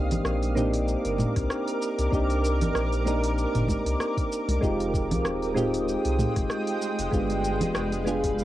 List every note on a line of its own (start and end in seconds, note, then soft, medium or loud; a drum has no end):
0.00 0.13 C2 loud
0.00 0.52 A#3 medium
0.00 0.53 C4 medium
0.00 0.53 D4 medium
0.00 0.53 D#4 medium
0.00 0.54 G4 medium
0.00 4.58 A#4 medium
0.00 4.58 D6 medium
0.11 0.20 G1 medium
0.11 open hi-hat soft
0.11 low conga medium
0.11 shaker soft
0.25 0.96 A#1 medium
0.25 cross-stick medium
0.25 shaker soft
0.42 open hi-hat soft
0.42 shaker soft
0.55 2.09 A#3 medium
0.55 2.09 C4 medium
0.55 2.09 D4 medium
0.55 2.10 D#4 medium
0.55 2.10 G4 medium
0.55 mid tom medium
0.55 high conga medium
0.55 shaker medium
0.74 open hi-hat soft
0.74 shaker soft
0.88 shaker soft
1.05 1.25 G1 medium
1.05 open hi-hat soft
1.05 shaker soft
1.18 mid tom medium
1.18 high conga medium
1.18 shaker medium
1.36 1.46 C2 medium
1.36 kick medium
1.36 cross-stick soft
1.36 open hi-hat medium
1.36 shaker soft
1.50 cross-stick medium
1.50 shaker soft
1.68 open hi-hat soft
1.68 shaker soft
1.82 shaker medium
1.99 2.08 C2 medium
1.99 open hi-hat medium
1.99 shaker soft
2.11 2.63 C2 loud
2.11 3.02 A#3 medium
2.11 3.02 C4 medium
2.11 3.03 D4 medium
2.11 3.03 D#4 medium
2.11 3.04 G4 medium
2.11 kick loud
2.11 shaker soft
2.30 open hi-hat soft
2.30 shaker soft
2.45 shaker medium
2.61 2.70 G1 medium
2.61 open hi-hat soft
2.61 low conga medium
2.61 shaker soft
2.75 3.46 A#1 medium
2.75 cross-stick medium
2.75 shaker soft
2.92 open hi-hat soft
2.92 shaker soft
3.05 4.59 A#3 medium
3.05 4.59 C4 medium
3.05 4.59 D4 medium
3.05 4.60 D#4 medium
3.05 4.60 A#4 medium
3.05 high conga medium
3.05 shaker medium
3.24 open hi-hat medium
3.24 shaker soft
3.38 shaker soft
3.55 3.75 G1 medium
3.55 mid tom medium
3.55 open hi-hat soft
3.55 shaker soft
3.68 kick medium
3.68 high conga medium
3.68 shaker medium
3.86 3.95 C2 medium
3.86 open hi-hat medium
3.86 shaker soft
4.00 cross-stick medium
4.00 shaker soft
4.17 kick medium
4.17 open hi-hat soft
4.17 shaker soft
4.32 shaker medium
4.48 4.58 C2 medium
4.48 open hi-hat medium
4.48 high conga medium
4.48 shaker soft
4.61 5.12 F1 loud
4.61 5.52 G#3 medium
4.61 8.44 G#3 medium
4.61 5.52 C4 medium
4.61 5.53 D#4 medium
4.61 5.53 F4 medium
4.61 5.54 G4 medium
4.61 7.10 G5 medium
4.61 7.10 D#6 medium
4.61 kick loud
4.61 shaker soft
4.80 open hi-hat soft
4.80 shaker soft
4.94 kick medium
4.94 shaker medium
5.11 5.20 C2 medium
5.11 open hi-hat medium
5.11 low conga medium
5.11 shaker soft
5.25 5.96 D#1 medium
5.25 cross-stick medium
5.25 shaker soft
5.42 open hi-hat soft
5.42 shaker soft
5.54 7.08 G#3 medium
5.54 7.09 C4 medium
5.54 7.09 D#4 medium
5.54 7.09 F4 medium
5.54 7.10 G4 loud
5.54 mid tom medium
5.54 high conga medium
5.54 shaker medium
5.74 open hi-hat medium
5.74 shaker soft
5.88 shaker soft
6.05 6.25 C2 medium
6.05 open hi-hat soft
6.05 shaker soft
6.18 mid tom medium
6.18 high conga medium
6.18 shaker medium
6.36 6.45 F1 medium
6.36 kick medium
6.36 cross-stick soft
6.36 open hi-hat medium
6.36 shaker soft
6.50 cross-stick medium
6.50 shaker soft
6.67 open hi-hat soft
6.67 shaker soft
6.82 shaker medium
6.99 7.08 F1 loud
6.99 open hi-hat medium
6.99 shaker soft
7.11 7.63 G1 loud
7.11 8.02 G#3 medium
7.11 8.03 B3 medium
7.11 8.03 D4 medium
7.11 8.03 F4 medium
7.11 8.04 G4 medium
7.11 8.44 F5 medium
7.11 8.44 B5 medium
7.11 kick loud
7.11 shaker soft
7.30 open hi-hat soft
7.30 shaker soft
7.45 shaker medium
7.61 7.70 D1 loud
7.61 open hi-hat medium
7.61 low conga medium
7.61 shaker soft
7.75 8.44 F1 medium
7.75 cross-stick loud
7.75 shaker soft
7.92 open hi-hat soft
7.92 shaker soft
8.05 8.44 G#3 medium
8.05 8.44 B3 medium
8.05 8.44 D4 medium
8.05 8.44 F4 medium
8.05 8.44 G#4 medium
8.05 high conga medium
8.05 shaker medium
8.24 kick medium
8.24 open hi-hat medium
8.24 shaker soft
8.39 shaker soft